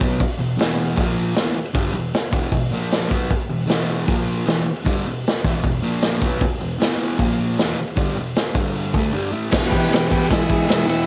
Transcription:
0.00 B2 F#3 B3, kick
0.19 kick, open hi-hat, shaker
0.39 E2 B2, shaker
0.57 E2 B2 E3, snare, open hi-hat, shaker
0.88 shaker
0.95 A#2 F3 A#3, kick, open hi-hat, shaker
1.14 shaker
1.34 E2 B2 E3, snare, open hi-hat, shaker
1.54 muted distorted electric guitar stroke, shaker
1.74 G2 D3 G3, kick, open hi-hat, shaker
1.93 E2 B2, shaker
2.04 shaker
2.10 open hi-hat, shaker
2.15 snare
2.31 E2 B2 E3, kick, shaker
2.41 shaker
2.48 E2 B2, kick, open hi-hat, shaker
2.69 A#2 F3, shaker
2.74 A#3
2.80 shaker
2.90 snare, open hi-hat, shaker
3.09 B2 F#3 B3, kick, shaker
3.19 shaker
3.29 kick, open hi-hat, shaker
3.48 E2 B2, shaker
3.67 E2 B2 E3, snare, open hi-hat, shaker
3.87 shaker
4.06 A#2 F3 A#3, kick, open hi-hat, shaker
4.27 shaker
4.46 E2 B2 E3, snare, open hi-hat, shaker
4.66 muted distorted electric guitar stroke, shaker
4.84 G2 D3 G3, kick, open hi-hat, shaker
5.05 E2 B2, shaker
5.25 snare, open hi-hat, shaker
5.43 E2 B2 E3, kick, shaker
5.54 shaker
5.62 E2 B2, kick, open hi-hat, shaker
5.82 A#2 F3 A#3, shaker
5.93 shaker
6.01 snare, open hi-hat, shaker
6.21 B2 F#3 B3, kick, shaker
6.41 kick, open hi-hat, shaker
6.60 E2 B2, shaker
6.79 E2 B2 E3, snare, open hi-hat, shaker
7.00 shaker
7.08 shaker
7.18 A#2 F3 A#3, kick, open hi-hat, shaker
7.36 shaker
7.49 shaker
7.56 E2 B2, snare, open hi-hat, shaker
7.60 E3
7.76 muted distorted electric guitar stroke, shaker
7.96 G2 D3 G3, kick, open hi-hat, shaker
8.16 E2 B2, shaker
8.28 shaker
8.35 snare, open hi-hat, shaker
8.54 G2 D3 G3, kick
8.65 shaker
8.75 open hi-hat, shaker
8.94 D3 A3 D4, kick, shaker
9.04 shaker
9.13 G2 D3 G3
9.32 A2 E3 A3
9.50 E2 B2, kick, snare, crash, shaker
9.55 E3
9.66 B3 F#4
9.70 E3 G4, kick, ride, shaker
9.75 B2
9.88 E2 B2 B3 G4, shaker
9.93 E3, snare, ride
10.09 E3 B3 G4, kick, ride
10.15 B2
10.30 G#3 E4, kick, snare, ride, shaker
10.49 G#3 E4, kick, ride, shaker
10.68 E2 B2 G#3 E4, snare, ride, shaker
10.74 E3
10.86 E3 D#4 E4, ride, shaker
10.91 B2

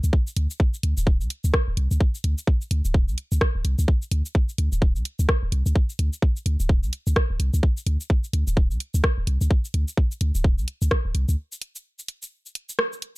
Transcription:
0.04 D2, shaker
0.13 kick
0.27 shaker
0.36 D2, closed hi-hat
0.51 shaker
0.60 kick
0.74 shaker
0.83 D2, closed hi-hat
0.97 D1, shaker
1.07 kick
1.21 C2, shaker
1.30 closed hi-hat
1.44 D2, shaker
1.54 kick, cross-stick
1.68 D1
1.77 C2, closed hi-hat
1.91 D2, shaker
2.01 kick
2.15 shaker
2.24 D2, closed hi-hat
2.38 shaker
2.47 kick
2.61 shaker
2.71 D2, closed hi-hat
2.85 D1, shaker
2.94 kick
3.08 C2, shaker
3.18 closed hi-hat
3.32 D2, shaker
3.41 kick, cross-stick
3.55 D1
3.65 C2, closed hi-hat
3.79 D2, shaker
3.88 kick
4.02 shaker
4.11 D2, closed hi-hat
4.26 shaker
4.35 kick
4.49 shaker
4.58 D2, closed hi-hat
4.72 D1, shaker
4.82 kick
4.96 C2, shaker
5.05 closed hi-hat
5.19 D2, shaker
5.29 kick, cross-stick
5.43 D1
5.52 C2, closed hi-hat
5.66 D2, shaker
5.76 kick
5.90 shaker
5.99 D2, closed hi-hat
6.13 shaker
6.22 kick
6.36 shaker
6.46 D2, closed hi-hat
6.60 D1, shaker
6.69 kick
6.83 C2, shaker
6.93 closed hi-hat
7.07 D2, shaker
7.16 kick, cross-stick
7.30 D1
7.40 C2, closed hi-hat
7.54 D2, shaker
7.63 kick
7.77 shaker
7.86 D2, closed hi-hat
8.01 shaker
8.10 kick
8.24 shaker
8.33 D2, closed hi-hat
8.47 D1, shaker
8.57 kick
8.71 C2, shaker
8.80 closed hi-hat
8.94 D2, shaker
9.04 kick, cross-stick
9.18 D1
9.27 C2, closed hi-hat
9.41 D2, shaker
9.51 kick
9.65 shaker
9.74 D2, closed hi-hat
9.88 shaker
9.97 kick
10.11 shaker
10.21 D2, closed hi-hat
10.35 D1, shaker
10.44 kick
10.58 C2, shaker
10.68 closed hi-hat
10.82 D2, shaker
10.91 kick, cross-stick
11.05 D1
11.15 C2, closed hi-hat
11.29 D2, shaker
11.52 shaker
11.62 closed hi-hat
11.76 shaker
11.99 shaker
12.08 closed hi-hat
12.22 shaker
12.46 shaker
12.55 closed hi-hat
12.69 shaker
12.79 cross-stick
12.93 shaker
13.02 closed hi-hat

